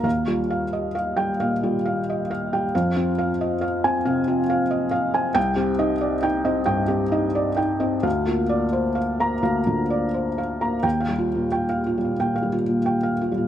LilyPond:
<<
  \new Staff \with { instrumentName = "Felt piano" } { \time 4/4 \key ees \major \tempo 4 = 90 << { r4 \tuplet 3/2 { r4 g''8 } r2 | r4 \tuplet 3/2 { r4 aes''8 } r2 | g''8 r2. r8 | r4 \tuplet 3/2 { r4 bes''8 } r2 |
g''8 r2. r8 | } \\ { \tuplet 3/2 { f''8 f'8 f''8 ees''8 f''4 f''8 f'8 f''8 ees''8 f''8 g''8 } | \tuplet 3/2 { f''8 f'8 f''8 ees''8 f''4 f''8 f'8 f''8 ees''8 f''8 aes''8 } | \tuplet 3/2 { r8 g'8 ees''8 d''8 g''8 ees''8 g''8 g'8 ees''8 d''8 g''8 ees''8 } | \tuplet 3/2 { f''8 f'8 d''8 c''8 f''4 f''8 f'8 d''8 c''8 f''8 bes''8 } |
r16 f''16 f'16 bes,16 g''16 f''16 f'16 bes,16 g''16 f''16 f'16 bes,16 g''16 f''16 f'16 bes,16 | } >> }
  \new Staff \with { instrumentName = "Felt piano" } { \clef bass \time 4/4 \key ees \major \tuplet 3/2 { ees,8 g4 r4 g8 bes,8 g4 r4 g8 } | \tuplet 3/2 { f,8 c'4 r4 c'8 c8 c'4 r4 c'8 } | \tuplet 3/2 { c,8 c'8 ees'8~ ees'8 ees'8 c'8 g,8 c'8 ees'8~ ees'8 ees'8 c'8 } | \tuplet 3/2 { d,8 bes4 r4 bes8 d,8 d4 r4 bes8 } |
\tuplet 3/2 { ees,8 g4 r4 g8 bes,8 g4 r4 g8 } | }
>>